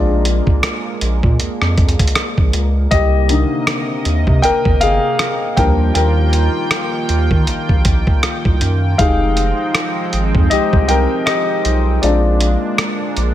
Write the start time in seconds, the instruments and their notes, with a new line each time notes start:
Already playing: analog synth bass A#1, grand piano G#3 C4 D4 F4 D5, analog synth pad G#3 A#3
0.25 closed hi-hat
0.47 kick
0.63 cross-stick, closed hi-hat
1.01 analog synth bass A#1, closed hi-hat
1.23 analog synth bass A#2, kick
1.40 analog synth bass F2, closed hi-hat
1.62 analog synth bass F2, cross-stick
1.78 kick, closed hi-hat
1.89 closed hi-hat
1.99 kick, closed hi-hat
2.07 closed hi-hat
2.15 cross-stick, closed hi-hat
2.38 analog synth bass A#1, kick
2.53 analog synth bass C#2, closed hi-hat
2.91 analog synth bass C2, analog synth pad C3 D#5, grand piano G4 D#5, kick, closed hi-hat
3.29 grand piano D3 D#3 A#3, closed hi-hat
3.67 cross-stick, closed hi-hat
4.05 analog synth bass D#2, closed hi-hat
4.27 analog synth bass C3, kick
4.42 analog synth bass G1, grand piano A#4 G5, closed hi-hat
4.65 analog synth bass G1, kick
4.81 grand piano G#4 F5, closed hi-hat
5.19 cross-stick, closed hi-hat
5.57 analog synth bass D#2, analog synth pad D#3 F4 G5, grand piano F3 G3 D4 A#4 G5, kick, closed hi-hat
5.94 analog synth bass D#2, grand piano A#4 G5, closed hi-hat
6.33 closed hi-hat
6.71 cross-stick, closed hi-hat
7.09 analog synth bass D#2, closed hi-hat
7.31 analog synth bass D#3, kick
7.47 analog synth bass A#1, closed hi-hat
7.69 analog synth bass A#1, kick
7.85 kick, closed hi-hat
8.07 kick
8.23 cross-stick, closed hi-hat
8.45 analog synth bass C2, kick
8.61 analog synth bass F#2, closed hi-hat
8.98 analog synth bass F1, analog synth pad F3 G#3 C4 D#4, grand piano G#3 D#4 G4 G#4 F5, kick, closed hi-hat
9.37 closed hi-hat
9.75 cross-stick, closed hi-hat
10.13 analog synth bass G#1, closed hi-hat
10.35 analog synth bass F2, kick
10.50 analog synth bass C2, grand piano G4 D#5, closed hi-hat
10.73 analog synth bass C2, kick
10.88 grand piano A#4 G5, closed hi-hat
11.26 grand piano G4 D#5, cross-stick, closed hi-hat
11.65 analog synth bass B1, closed hi-hat
12.02 analog synth bass A#1, grand piano G#3 C4 D4 F4 D5, analog synth pad G#3 A#3 D4, closed hi-hat
12.41 closed hi-hat
12.78 cross-stick, closed hi-hat
13.17 analog synth bass A#1, closed hi-hat